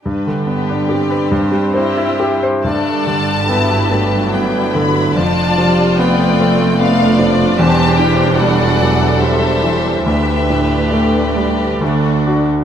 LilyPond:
<<
  \new Staff \with { instrumentName = "Violin section" } { \time 3/4 \key g \major \tempo 4 = 71 b'8 b'8 d''8 c''8 c''8. r16 | a''2 g''8 b''8 | a''4 g''4 f''8 d''8 | a''8 g''8 fis''4 e''4 |
e''4 d''4. r8 | }
  \new Staff \with { instrumentName = "Violin section" } { \time 3/4 \key g \major << { g'2 g'8. r16 | d''4 b'4 b'4 | d''4 d''4 d''4 | c''4 d''4 c''4 |
b'2 a'8. r16 | } \\ { r2. | a'4 g'4 e'4 | f'2 f'4 | g'4 a'2 |
g'2 fis'8. r16 | } >> }
  \new Staff \with { instrumentName = "Viola section" } { \time 3/4 \key g \major << { r2. | d'4 e'8 d'4. | d'4 b8 c'8 d'4~ | d'2. |
d'2 d'8. r16 | } \\ { d'4 c'4 e'8. r16 | a8 g8 fis2 | f8 g8 a2 | g4 fis8 e8 g4 |
a2 a8. r16 | } >> }
  \new Staff \with { instrumentName = "Grand piano" } { \clef bass \time 3/4 \key g \major g,16 d16 b16 d'16 g'16 b'16 g,16 g16 c'16 e'16 g'16 c''16 | g,8 d8 b8 a8 b8 d8 | f,8 f8 b8 a8 b8 f8 | e,8 e8 g8 fis8 g8 e8 |
d,8 a,8 a8 g8 d,8 <d' fis'>8 | }
  \new Staff \with { instrumentName = "Cello section" } { \clef bass \time 3/4 \key g \major g,2~ g,8. r16 | g,2. | f,2. | e,2. |
d,2 d,8. r16 | }
  \new Staff \with { instrumentName = "Double bass section" } { \clef bass \time 3/4 \key g \major r2. | g,,2. | f,,2. | e,,2. |
d,2 d,8. r16 | }
>>